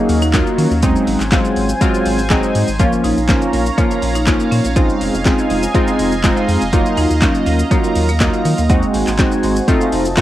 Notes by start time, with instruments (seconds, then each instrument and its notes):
Already playing: analog polysynth F#3 A#3 D#4 G#4, analog synth pad F#3 D#4 F5, marimba A#3
0.09 sub bass D#2, open hi-hat, shaker
0.22 marimba D#4, shaker
0.34 analog polysynth F#3 A#3 D#4 F4, kick, snare, clap, closed hi-hat, shaker
0.47 shaker
0.58 sub bass D#3, marimba C#4, open hi-hat, shaker
0.71 sub bass D#2, shaker
0.82 analog polysynth F#3 G#3 C4 D#4, marimba C4, analog synth pad C5 G#5, kick, closed hi-hat, shaker
0.96 shaker
1.07 sub bass G#1, open hi-hat, shaker
1.20 sub bass G#1, clap, shaker
1.32 analog polysynth F#3 G#3 C4 F4, kick, snare, clap, closed hi-hat, shaker
1.45 shaker
1.56 sub bass G#1, open hi-hat, shaker
1.69 shaker
1.81 analog polysynth F#3 G#3 C4 F4, kick, closed hi-hat, shaker
1.94 shaker
2.06 sub bass G#1, open hi-hat, shaker
2.19 shaker
2.30 analog polysynth F#3 G#3 C4 D#4, kick, snare, clap, closed hi-hat, shaker
2.43 shaker
2.55 sub bass G#2, open hi-hat, shaker
2.68 sub bass G#1, shaker
2.79 analog polysynth F3 A#3 C#4 F4, clean electric guitar A#3 C#4 F4, analog synth pad C#5 F5 A#5, kick, closed hi-hat, shaker
2.92 muted clean electric guitar stroke, shaker
3.04 sub bass A#1, clean electric guitar A#3 C#4 F4, marimba D#4, open hi-hat, shaker
3.16 sub bass A#1, clean electric guitar A#3 C#4 F4, shaker
3.29 analog polysynth F3 A#3 C#4 F4, marimba C#4, kick, snare, clap, closed hi-hat, shaker
3.41 muted clean electric guitar stroke, shaker
3.52 sub bass A#1, clean electric guitar A#3 C#4 F4, open hi-hat, shaker
3.66 muted clean electric guitar stroke, shaker
3.77 analog polysynth F3 A#3 C#4 F4, marimba A#3, muted clean electric guitar stroke, kick, closed hi-hat, shaker
3.91 clean electric guitar A#3 C#4 F4, shaker
4.02 sub bass A#1, clean electric guitar A#3 C#4 F4, open hi-hat, shaker
4.15 marimba D#4, muted clean electric guitar stroke, shaker
4.26 analog polysynth F3 A#3 C#4 F4, clean electric guitar A#3 C#4 F4, kick, snare, clap, closed hi-hat, shaker
4.40 muted clean electric guitar stroke, shaker
4.51 sub bass A#2, marimba C#4, open hi-hat, shaker
4.64 sub bass A#1, clean electric guitar A#3 C#4 F4, shaker
4.76 clean electric guitar G#3 D#4 F4, analog polysynth G#3 C4 D#4 F4, marimba C4, analog synth pad D#5 G#5, kick, closed hi-hat, shaker
4.89 muted clean electric guitar stroke, shaker
5.00 sub bass F1, clean electric guitar G#3 D#4 F4, open hi-hat, shaker
5.13 sub bass F1, clean electric guitar G#3 D#4 F4, shaker
5.25 analog polysynth G#3 C4 D#4 F4, kick, snare, clap, closed hi-hat, shaker
5.38 muted clean electric guitar stroke, shaker
5.50 sub bass F1, clean electric guitar G#3 D#4 F4, open hi-hat, shaker
5.63 muted clean electric guitar stroke, shaker
5.74 analog polysynth G#3 C4 D#4 F4, kick, closed hi-hat, shaker
5.87 clean electric guitar G#3 D#4 F4, shaker
5.99 sub bass F1, clean electric guitar G#3 D#4 F4, open hi-hat, shaker
6.12 muted clean electric guitar stroke, shaker
6.24 analog polysynth G#3 C4 D#4 F4, muted clean electric guitar stroke, kick, snare, clap, closed hi-hat, shaker
6.36 clean electric guitar G#3 D#4 F4, shaker
6.48 sub bass F2, muted clean electric guitar stroke, open hi-hat, shaker
6.61 sub bass F1, muted clean electric guitar stroke, shaker
6.72 clean electric guitar F#3 A#3 F4, analog polysynth F#3 A#3 D#4 F4, analog synth pad A#5, kick, closed hi-hat, shaker
6.86 muted clean electric guitar stroke, shaker
6.97 sub bass D#2, clean electric guitar F#3 A#3 F4, marimba D#4, open hi-hat, shaker
7.10 sub bass D#2, clean electric guitar F#3 A#3 F4, shaker
7.22 analog polysynth F#3 A#3 D#4 F4, marimba C#4, kick, snare, clap, closed hi-hat, shaker
7.35 muted clean electric guitar stroke, shaker
7.46 sub bass D#2, clean electric guitar F#3 A#3 F4, open hi-hat, shaker
7.59 muted clean electric guitar stroke, shaker
7.71 analog polysynth F#3 A#3 D#4 F4, marimba A#3, kick, closed hi-hat, shaker
7.84 clean electric guitar F#3 A#3 F4, shaker
7.95 sub bass D#2, clean electric guitar F#3 A#3 F4, open hi-hat, shaker
8.08 marimba A#3, muted clean electric guitar stroke, shaker
8.20 clean electric guitar F#3 A#3 F4, analog polysynth F#3 A#3 D#4 F4, kick, snare, clap, closed hi-hat, shaker
8.33 muted clean electric guitar stroke, shaker
8.45 sub bass D#3, marimba A#3, muted clean electric guitar stroke, open hi-hat, shaker
8.57 sub bass D#2, clean electric guitar F#3 A#3 F4, shaker
8.69 clean electric guitar G#3 C4 F#4, analog polysynth G#3 C4 D#4 F#4, marimba C4, analog synth pad F#4 C5 G#5, kick, closed hi-hat, shaker
8.82 muted clean electric guitar stroke, shaker
8.94 sub bass G#1, clean electric guitar G#3 C4 F#4, open hi-hat, shaker
9.07 sub bass G#1, clean electric guitar G#3 C4 F#4, clap, shaker
9.18 analog polysynth G#3 C4 D#4 F#4, kick, snare, clap, closed hi-hat, shaker
9.32 muted clean electric guitar stroke, shaker
9.43 sub bass G#1, clean electric guitar G#3 C4 F#4, open hi-hat, shaker
9.56 muted clean electric guitar stroke, shaker
9.68 analog polysynth A3 C4 D#4 F4, analog synth pad F4 D#5 A5, kick, closed hi-hat, shaker
9.81 clean electric guitar A3 D#4 F4, shaker
9.92 sub bass F1, clean electric guitar A3 D#4 F4, open hi-hat, shaker
10.05 muted clean electric guitar stroke, shaker
10.17 analog polysynth A3 C4 D#4 F4, kick, snare, clap, closed hi-hat, shaker